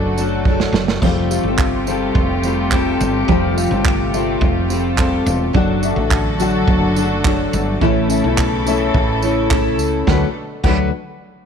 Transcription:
Already playing: fretless electric bass F#1, string section D3 F#3 A3 F#4 A4, steel-string acoustic guitar F#3 D4 F#4 A4
0.16 steel-string acoustic guitar F#3 D4 F#4 A4, tambourine
0.45 steel-string acoustic guitar F#3 D4 F#4 A4, kick
0.60 snare
0.73 fretless electric bass F#1, snare
0.88 snare
1.02 fretless electric bass F1, string section C3 G3 F4 G4, steel-string acoustic guitar F3 G3 C4 F4 A4, upright piano C4 G4 A4 F5, kick, splash
1.29 upright piano C4 G4 A4 F5, tambourine
1.43 fretless electric bass G1, steel-string acoustic guitar F4 A4
1.48 steel-string acoustic guitar C4
1.58 kick, clap
1.86 steel-string acoustic guitar G3 C4 F4 A4, upright piano C4 G4 A4 F5, tambourine
2.15 fretless electric bass F1, kick
2.43 steel-string acoustic guitar G3 C4 F4 A4, tambourine
2.70 steel-string acoustic guitar G3 C4 F4 A4, kick, clap
3.01 fretless electric bass G1, tambourine
3.27 fretless electric bass F1, steel-string acoustic guitar F3 G3 C4 F4 A4, upright piano C4 G4 A4 C5, string section F4, kick
3.55 upright piano C4 G4 A4 F5, tambourine
3.70 fretless electric bass G1, steel-string acoustic guitar C4 F4 A4
3.85 kick, clap
4.11 steel-string acoustic guitar G3 C4 F4 A4, upright piano C4 G4 A4 E5, tambourine
4.41 fretless electric bass F1, kick
4.68 steel-string acoustic guitar G3 C4 F4 A4, tambourine
4.97 steel-string acoustic guitar G3 C4 F4 A4, upright piano A5, kick, clap
5.26 fretless electric bass E1, upright piano F5, tambourine
5.53 fretless electric bass F#1, steel-string acoustic guitar F#3 D4 F#4 A4, string section A3 A4, upright piano D4 F#4 A4 F#5, kick
5.57 string section D3 F#3 F#4
5.82 upright piano D4 F#4 A4 E5, tambourine
5.96 fretless electric bass A1, steel-string acoustic guitar D4 F#4 A4
6.11 kick, clap
6.38 steel-string acoustic guitar F#3 D4 F#4 A4, upright piano D4 F#4 A4 F#5, tambourine
6.67 fretless electric bass F#1, kick
6.95 steel-string acoustic guitar F#3 D4 F#4 A4, tambourine
7.23 steel-string acoustic guitar F#3 D4 F#4 A4, kick, clap
7.53 fretless electric bass G1, tambourine
7.80 fretless electric bass A1, steel-string acoustic guitar A2 E3 A3 C#4 E4 A4, string section C#3 E3 E4 A4, upright piano C#4 E4 A4 E5, kick
8.08 upright piano C#4 E4 A4 E5, tambourine
8.24 fretless electric bass B1, steel-string acoustic guitar A3 C#4 E4 A4
8.38 kick, clap
8.65 steel-string acoustic guitar A3 C#4 E4 A4, upright piano C#4 E4 A4 E5, tambourine
8.94 fretless electric bass A1, kick
9.22 steel-string acoustic guitar A3 C#4 E4 A4, tambourine
9.51 steel-string acoustic guitar A3 C#4 E4 A4, kick, clap
9.78 fretless electric bass C#2, tambourine
10.07 fretless electric bass D2, string section B2 F#3 A3 D4 A4, steel-string acoustic guitar D3 F#3 A3 F#4 B4, upright piano D4 B4 F#5, kick, snare
10.64 fretless electric bass D2, steel-string acoustic guitar D3 F#3 A3 F#4 B4, upright piano D4 B4 F#5, kick, crash

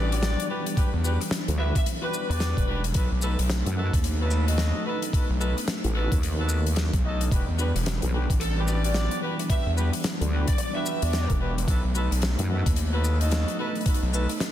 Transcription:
Already playing: analog synth bass A1, analog synth pad E3 G3 B3 D4, lead electric guitar D5
0.12 horn section D4 F#4 G4 D5, closed hi-hat
0.23 lead electric guitar D5, snare, closed hi-hat
0.40 closed hi-hat
0.50 horn section D4 F#4 G4 B4
0.66 closed hi-hat
0.77 horn section D4 F#4 G4 B4, kick, closed hi-hat
0.93 analog synth bass E2
1.04 horn section D4 F#4 G4 B4, shaker
1.21 cross-stick, closed hi-hat
1.31 snare, closed hi-hat
1.48 wobble bass D2, closed hi-hat
1.58 horn section D4 F#4 G4 B4, lead electric guitar E5
1.75 lead electric guitar E5, kick, closed hi-hat
1.86 closed hi-hat
2.03 horn section D4 F#4 G4 B4, lead electric guitar B4
2.14 shaker
2.30 analog synth bass E2, horn section D4 F#4 G4 D5, lead electric guitar B4, closed hi-hat
2.40 snare, closed hi-hat
2.57 analog synth bass E1, kick, closed hi-hat
2.68 horn section D4 F#4 G4 B4
2.84 closed hi-hat
2.94 analog synth bass B1, analog synth pad A3 B3 D#4, horn section D#4 F#4 A4 B4, kick, closed hi-hat
3.12 analog synth bass B1
3.22 horn section D#4 F#4 A4 B4, shaker
3.39 analog synth bass B1, cross-stick, closed hi-hat
3.50 snare, closed hi-hat
3.66 wobble bass F#2, closed hi-hat
3.77 horn section D#4 F#4 A4 B4
3.93 analog synth bass D#2, kick, closed hi-hat
4.04 closed hi-hat
4.21 horn section D#4 F#4 A4 B4
4.31 cross-stick, shaker
4.48 horn section D#4 F#4 A4 D#5, closed hi-hat
4.58 snare, closed hi-hat
4.86 horn section D#4 F#4 A4 B4
5.02 closed hi-hat
5.13 horn section D#4 F#4 A4 B4, kick, closed hi-hat
5.30 analog synth bass B1
5.41 horn section D#4 F#4 A4 B4, shaker
5.57 cross-stick, closed hi-hat
5.68 snare, closed hi-hat
5.84 wobble bass A1, closed hi-hat
5.95 horn section D#4 F#4 A4 B4
6.12 wobble bass D#2, kick, closed hi-hat
6.23 closed hi-hat
6.39 horn section D#4 F#4 A4 B4
6.49 shaker
6.67 closed hi-hat
6.76 snare, closed hi-hat
6.93 analog synth bass B1, kick, closed hi-hat
7.04 horn section D#4 F#4 A4 D#5
7.21 closed hi-hat
7.31 analog synth bass E1, analog synth pad E3 G3 D4, horn section D4 F#4 G4 B4, kick, closed hi-hat
7.48 analog synth bass E2
7.59 horn section D4 F#4 G4 B4, shaker
7.75 analog synth bass E1, cross-stick, closed hi-hat
7.86 snare, closed hi-hat
8.02 wobble bass B1, closed hi-hat
8.13 horn section D4 F#4 G4 B4
8.30 analog synth bass A1, kick, closed hi-hat
8.40 lead electric guitar A4, closed hi-hat
8.57 horn section D4 F#4 G4 B4
8.68 lead electric guitar D5, cross-stick, shaker
8.84 horn section D4 F#4 G4 D5, closed hi-hat
8.94 lead electric guitar D5, snare, closed hi-hat
9.11 closed hi-hat
9.23 horn section D4 F#4 G4 B4
9.39 closed hi-hat
9.50 horn section D4 F#4 G4 B4, lead electric guitar E5, kick, closed hi-hat
9.66 analog synth bass E2
9.77 horn section D4 F#4 G4 B4, shaker
9.93 closed hi-hat
10.04 snare, closed hi-hat
10.21 wobble bass D2, closed hi-hat
10.32 horn section D4 F#4 G4 B4
10.48 lead electric guitar D5, kick, closed hi-hat
10.58 lead electric guitar D5, closed hi-hat
10.75 horn section D4 F#4 G4 B4, lead electric guitar E5
10.86 shaker
11.02 analog synth bass E2, horn section D4 F#4 G4 D5, closed hi-hat
11.13 snare, closed hi-hat
11.30 analog synth bass E1, kick, closed hi-hat
11.41 horn section D4 F#4 G4 B4
11.58 closed hi-hat
11.68 analog synth bass B1, analog synth pad A3 D#4, horn section D#4 F#4 A4 B4, kick, closed hi-hat
11.85 analog synth bass B1
11.95 horn section D#4 F#4 A4 B4, shaker
12.11 analog synth bass B1, cross-stick, closed hi-hat
12.22 snare, closed hi-hat
12.39 wobble bass F#2, closed hi-hat
12.50 horn section D#4 F#4 A4 B4
12.66 analog synth bass D#2, kick, closed hi-hat
12.76 closed hi-hat
12.93 horn section D#4 F#4 A4 B4
13.04 cross-stick, shaker
13.21 horn section D#4 F#4 A4 D#5, closed hi-hat
13.31 snare, closed hi-hat
13.48 closed hi-hat
13.59 horn section D#4 F#4 A4 B4
13.75 closed hi-hat
13.81 closed hi-hat
13.86 horn section D#4 F#4 A4 B4, kick, closed hi-hat
13.94 closed hi-hat
14.03 analog synth bass B1
14.13 horn section D#4 F#4 A4 B4, shaker
14.29 cross-stick, closed hi-hat
14.40 snare, closed hi-hat

